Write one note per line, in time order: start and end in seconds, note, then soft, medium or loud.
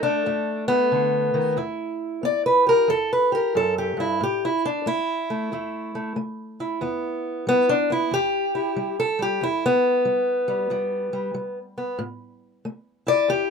0.00 0.21 D#3 medium
0.00 0.25 A3 soft
0.00 0.68 D4 medium
0.00 1.13 A4 medium
0.26 0.87 F#2 medium
0.26 0.69 A3 soft
0.68 1.55 A3 soft
0.68 1.56 B3 loud
0.92 1.34 D3 medium
1.34 1.57 D#3 medium
1.57 2.18 E2 medium
1.57 4.00 E4 medium
2.23 2.84 B3 medium
2.23 2.46 D5 medium
2.46 2.67 B4 medium
2.67 2.89 G4 soft
2.67 2.89 A#4 medium
2.88 3.49 E2 medium
2.88 3.11 A4 medium
3.13 3.33 B4 medium
3.32 3.54 G4 soft
3.32 3.55 A#4 medium
3.55 3.96 F#2 medium
3.55 3.77 A4 medium
3.78 3.99 G4 medium
3.97 4.19 G2 medium
3.97 4.21 E4 medium
4.21 4.81 A2 medium
4.21 4.43 G4 medium
4.45 4.65 E4 medium
4.65 4.86 D4 medium
4.86 5.28 A3 medium
4.86 6.17 E4 loud
5.30 5.51 A3 soft
5.52 6.12 E2 medium
5.52 5.94 A3 soft
5.95 6.15 A3 soft
6.16 6.76 A3 medium
6.60 7.69 E4 soft
6.81 7.41 E2 medium
6.81 7.48 B3 medium
7.47 8.07 G3 medium
7.47 7.69 B3 loud
7.69 7.90 D4 medium
7.90 8.13 B3 soft
7.90 8.12 E4 medium
8.11 8.72 E2 medium
8.11 8.99 G4 loud
8.55 8.99 E4 soft
8.76 9.18 G3 medium
9.00 9.20 A4 medium
9.19 9.38 G3 soft
9.19 9.42 G4 medium
9.41 10.01 E2 medium
9.41 9.64 E4 medium
9.66 11.58 B3 loud
10.05 10.47 G3 medium
10.48 10.69 G3 soft
10.70 11.31 E2 medium
10.70 11.12 G3 soft
11.13 11.33 G3 soft
11.34 11.95 G3 medium
11.78 12.00 B3 soft
11.99 12.59 A2 medium
12.65 13.25 A3 medium
13.07 13.50 E4 soft
13.07 13.29 D5 loud
13.28 13.50 E2 medium
13.28 13.50 G4 medium